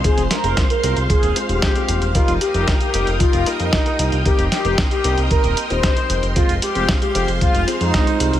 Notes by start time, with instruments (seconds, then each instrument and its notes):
Already playing: string machine G#3 C5 F5 C6
0.04 grand piano G#3 C4 F4 C5, analog polysynth G#4, kick, closed hi-hat
0.18 analog synth bass F1, closed hi-hat
0.31 analog polysynth A#4, snare, closed hi-hat
0.44 analog synth bass F1, grand piano G#3 C4 F4 C5, closed hi-hat
0.57 kick, snare, closed hi-hat
0.70 analog polysynth A#4, closed hi-hat
0.83 analog synth bass C2, grand piano G#3 C4 F4 C5, closed hi-hat
0.97 analog synth bass C2, closed hi-hat
1.10 analog polysynth G#4, kick, closed hi-hat
1.23 analog synth bass D#1, closed hi-hat
1.36 grand piano G#3 C4 F4 C5, closed hi-hat
1.49 analog synth bass D#1, analog polysynth G4, closed hi-hat
1.62 kick, snare, closed hi-hat
1.75 grand piano G#3 C4 F4 C5, closed hi-hat
1.89 analog synth bass D#1, closed hi-hat
2.02 analog synth bass D#1, closed hi-hat
2.15 grand piano G3 D#4 F4 A#4, analog polysynth F4, string machine A#4 G5 D#6, kick, closed hi-hat
2.28 analog synth bass F1, closed hi-hat
2.41 analog polysynth G4, closed hi-hat
2.54 analog synth bass F1, grand piano G3 D#4 F4 A#4, closed hi-hat
2.68 kick, snare, closed hi-hat
2.81 analog polysynth G4, closed hi-hat
2.94 analog synth bass F1, grand piano G3 D#4 F4 A#4, closed hi-hat
3.07 analog synth bass F1, closed hi-hat
3.20 analog polysynth F4, kick, closed hi-hat
3.33 analog synth bass F1, closed hi-hat
3.46 grand piano G3 D#4 F4 A#4, closed hi-hat
3.60 analog synth bass F2, analog polysynth D#4, closed hi-hat
3.73 kick, snare, closed hi-hat
3.86 grand piano G3 D#4 F4 A#4, closed hi-hat
3.99 analog synth bass C2, closed hi-hat
4.12 analog synth bass C2, closed hi-hat
4.25 grand piano G3 C4 D#4 A#4, analog polysynth G4, string machine A#4 D#5 C6, kick, closed hi-hat
4.39 analog synth bass F1, closed hi-hat
4.52 analog polysynth G4, snare, closed hi-hat
4.65 analog synth bass F1, grand piano G3 C4 D#4 A#4, closed hi-hat
4.78 kick, snare, closed hi-hat
4.91 analog polysynth G4, closed hi-hat
5.04 analog synth bass C2, grand piano G3 C4 D#4 A#4, closed hi-hat
5.18 analog synth bass C2, closed hi-hat
5.31 analog polysynth A#4, kick, closed hi-hat
5.44 analog synth bass D#1, closed hi-hat
5.57 closed hi-hat
5.70 analog synth bass D#1, grand piano G3 C4 D#4 A#4, analog polysynth C5, closed hi-hat
5.83 kick, snare, closed hi-hat
5.96 grand piano G3 C4 D#4 C5, closed hi-hat
6.10 analog synth bass F1, closed hi-hat
6.23 analog synth bass F1, closed hi-hat
6.36 grand piano G#3 C4 F4 C5, string machine G#3 C5 F5, analog polysynth F4, kick, closed hi-hat
6.49 analog synth bass F1, closed hi-hat
6.62 analog polysynth G4, closed hi-hat
6.75 analog synth bass F1, grand piano G#3 C4 F4 C5, closed hi-hat
6.89 kick, snare, closed hi-hat
7.02 analog polysynth G4, closed hi-hat
7.15 analog synth bass F1, grand piano G#3 C4 F4 C5, closed hi-hat
7.28 analog synth bass F1, closed hi-hat
7.41 analog polysynth F4, kick, closed hi-hat
7.55 analog synth bass F1, closed hi-hat
7.68 grand piano G#3 C4 F4 C5, closed hi-hat
7.81 analog synth bass F2, analog polysynth D#4, closed hi-hat
7.94 kick, snare, closed hi-hat
8.07 grand piano G#3 C4 F4 C5, closed hi-hat
8.20 analog synth bass C2, closed hi-hat
8.33 analog synth bass C2, closed hi-hat